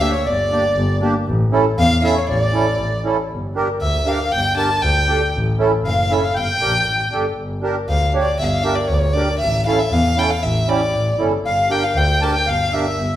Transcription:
0.00 A#3 D4 G4 E5
0.14 C#5
0.25 G1 D5
0.51 A#3 D4 G4
0.76 G1
1.01 A#3 D4 G4
1.27 A1
1.52 C#4 E4 A4
1.78 E2 F5
2.02 C#4 E4 A4 E5
2.14 C#5
2.18 C#5
2.29 A1 D5
2.53 C#4 E4 A4
2.79 A1
3.04 C#4 E4 A4
3.30 G1
3.55 D4 G4 A#4
3.81 D2 E5
4.06 D4 G4 A#4 F5
4.31 G1 G5
4.56 D4 G4 A#4 A5
4.82 D2 G5
5.07 D4 G4 A4
5.34 A1
5.59 C#4 E4 A4
5.84 F#1 F5
6.10 C#4 E4 A4 E5
6.21 F5
6.34 G1 G5
6.41 F5
6.50 G5
6.61 A#1 D4 G4 A#4
6.87 A1
7.12 G1 D4 G4 A4
7.38 G1
7.62 D4 G4 A#4
7.89 D2 F5
8.13 D4 G4 C#5
8.22 D5
8.39 G1 E5 F5
8.44 E5
8.49 F5
8.63 D4 G4 A#4 E5
8.75 D5
8.87 D2 C#5
8.94 D5
9.00 C#5
9.13 D4 G4 A#4 D5
9.39 A1 E5
9.66 C#4 E4 A4 F5
9.79 E5
9.91 E2 F5
10.17 C#4 E4 A4 G5
10.30 F5
10.43 A1 E5
10.68 C#4 E4 G4 D5
10.95 A1
11.19 G1 C#4 E4 A4
11.45 G1 F5
11.70 D4 G4 A#4 G5
11.84 F5
11.95 D2 G5
12.21 D4 G4 A#4 A5
12.33 G5
12.46 G1 F5
12.65 F5
12.72 D4 G4 A#4 E5
12.98 G1

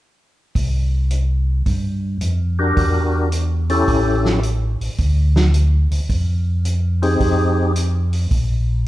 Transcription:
0.55 C2, kick, open hi-hat
1.11 closed hi-hat
1.66 G2, kick, open hi-hat
2.21 F2, closed hi-hat
2.59 D4 F#4 G4 A#4
2.77 E2, kick, open hi-hat
3.32 closed hi-hat
3.69 C#4 E4 G4 A4, open hi-hat
3.88 A1, kick, open hi-hat
4.25 snare
4.43 closed hi-hat
4.81 A1, open hi-hat
4.98 D2, kick, open hi-hat
5.36 snare
5.54 closed hi-hat
5.91 D2, open hi-hat
6.09 F2, kick, open hi-hat
6.65 closed hi-hat
7.02 C4 D#4 G4 G#4, open hi-hat
7.20 F2, kick, open hi-hat
7.76 closed hi-hat
8.13 open hi-hat
8.31 A#1, kick, open hi-hat

